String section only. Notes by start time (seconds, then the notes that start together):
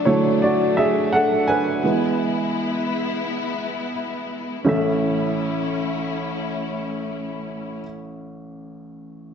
Already playing: F#3 A3 D4
1.83 G#3 B3 E4
4.66 A3 C#4 E4